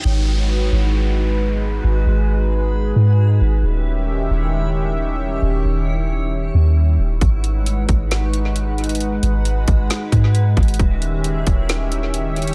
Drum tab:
HH |--------------------------------|--------------------------------|--------------------------------|--------------------------------|
SD |--------------------------------|--------------------------------|--------------------------------|--------------------------------|
BD |--------------------------------|--------------------------------|--------------------------------|--------------------------------|

HH |x---x---x---x---x---x---x---xxxx|x---x---x---x---x---x---x---xxxx|x---x---x---x---x---x---x---xxx-|
SD |----------------o---------------|----------------o---------------|----------------o---------------|
BD |o-----------o-------------------|------------o-------o-------o---|o-----------o-------------------|